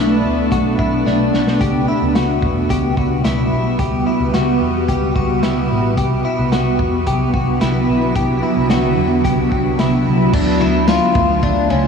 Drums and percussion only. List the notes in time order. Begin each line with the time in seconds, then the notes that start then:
0.52 kick, closed hi-hat
0.79 kick
1.06 snare
1.34 snare
1.47 snare
1.61 kick, closed hi-hat
2.15 snare, closed hi-hat
2.42 kick
2.70 kick, closed hi-hat
2.97 kick
3.25 snare, closed hi-hat
3.79 kick, closed hi-hat
4.34 snare, closed hi-hat
4.88 kick, closed hi-hat
5.16 kick
5.43 snare, closed hi-hat
5.98 kick, closed hi-hat
6.52 snare, closed hi-hat
6.79 kick
7.07 kick, closed hi-hat
7.34 kick
7.61 snare, closed hi-hat
8.16 kick, closed hi-hat
8.70 snare, closed hi-hat
9.25 kick, closed hi-hat
9.52 kick
9.79 snare, closed hi-hat
10.33 kick, crash
10.61 ride
10.88 snare, ride, tambourine
11.15 kick, ride
11.43 kick, ride
11.70 ride